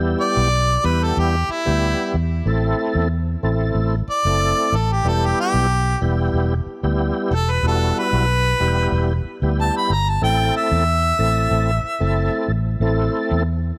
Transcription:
Already playing: fingered electric bass E2, tonewheel organ G3 B3 E4 G4
0.21 harmonica D5
0.37 fingered electric bass B1
0.83 fingered electric bass E2, tonewheel organ G3 B3 E4 G4, harmonica B4
1.03 harmonica A4
1.17 fingered electric bass E2, harmonica G4
1.49 harmonica E4, muted fingered electric bass stroke
1.65 fingered electric bass D2, tonewheel organ G3 B3 E4 G4
2.14 fingered electric bass E2
2.46 fingered electric bass A1, tonewheel organ A3 C4 E4 A4
2.95 fingered electric bass E2
3.43 fingered electric bass A1, tonewheel organ A3 C4 E4 A4
3.75 fingered electric bass A1
4.08 harmonica D5, muted fingered electric bass stroke
4.25 fingered electric bass F#1, tonewheel organ A3 C4 E4 A4
4.72 fingered electric bass A1, harmonica A4
4.92 harmonica G4
5.04 fingered electric bass E1, tonewheel organ G3 B3 E4 G4, harmonica A4
5.26 harmonica G4
5.40 harmonica G4
5.54 fingered electric bass B1
6.01 fingered electric bass E1, tonewheel organ G3 B3 E4 G4
6.34 fingered electric bass E1
6.66 muted fingered electric bass stroke
6.83 fingered electric bass D2, tonewheel organ G3 B3 E4 G4
7.31 fingered electric bass E1, harmonica A4
7.51 harmonica B4
7.63 fingered electric bass E1, tonewheel organ G3 B3 E4 F#4
7.67 harmonica A4
7.99 harmonica B4
8.13 fingered electric bass B1
8.60 fingered electric bass E1, tonewheel organ G3 B3 E4 G4
8.92 fingered electric bass E1
9.25 muted fingered electric bass stroke
9.42 fingered electric bass D2, tonewheel organ G3 B3 E4 G4
9.61 harmonica A5
9.77 harmonica B5
9.90 fingered electric bass G1, harmonica A#5
10.09 harmonica A5
10.21 fingered electric bass A1, tonewheel organ A3 C4 E4 A4, harmonica G5
10.57 harmonica E5
10.71 fingered electric bass E2
11.19 fingered electric bass A1, tonewheel organ A3 C4 E4 A4
11.51 fingered electric bass A1
11.84 muted fingered electric bass stroke
12.00 fingered electric bass F#1, tonewheel organ A3 C4 E4 A4
12.48 fingered electric bass A1
12.80 fingered electric bass A1, tonewheel organ A3 C4 E4 A4
13.31 fingered electric bass E2

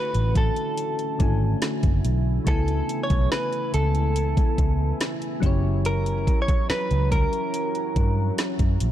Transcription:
Already playing: synth keys D3 A3 C#4 E4 F#4, ambient pad D3 A3 C#4 E4 F#4, clean electric guitar B4
0.14 fingered electric bass A1, closed hi-hat
0.35 clean electric guitar A4, kick, closed hi-hat
0.56 closed hi-hat
0.78 closed hi-hat
0.99 closed hi-hat
1.19 fingered electric bass G#1, synth keys D3 A3 C#4 E4 G#5, kick, closed hi-hat
1.62 snare, closed hi-hat
1.83 fingered electric bass F#1, kick, closed hi-hat
2.05 fingered electric bass B1, closed hi-hat
2.45 fingered electric bass C#2, synth keys C#3 A3 B3, ambient pad C#3 B3 G#5, clean electric guitar A4, kick, closed hi-hat
2.49 synth keys E4 G#5
2.68 closed hi-hat
2.89 closed hi-hat
3.03 clean electric guitar C#5
3.10 fingered electric bass B1, kick, closed hi-hat
3.32 clean electric guitar B4, snare
3.53 closed hi-hat
3.74 fingered electric bass C#2, clean electric guitar A4, closed hi-hat
3.95 closed hi-hat
4.16 closed hi-hat
4.37 kick, closed hi-hat
4.58 fingered electric bass C#2, kick, closed hi-hat
5.01 snare, closed hi-hat
5.22 closed hi-hat
5.40 fingered electric bass F#1, synth keys F#3 C#4 E4, ambient pad F#3 C#4 G4 A#5, kick, closed hi-hat
5.45 synth keys G4 C#5
5.85 clean electric guitar A#4, closed hi-hat
6.06 closed hi-hat
6.27 kick, closed hi-hat
6.42 clean electric guitar C#5
6.48 muted fingered electric bass stroke, kick, closed hi-hat
6.70 clean electric guitar B4, muted fingered electric bass stroke, snare
6.91 fingered electric bass C#2, closed hi-hat
7.11 clean electric guitar A#4, ambient pad F#5, kick, closed hi-hat
7.33 closed hi-hat
7.54 closed hi-hat
7.75 closed hi-hat
7.96 fingered electric bass G2, kick, closed hi-hat
8.38 snare, closed hi-hat
8.59 fingered electric bass F#2, kick, closed hi-hat
8.80 fingered electric bass A#1, closed hi-hat

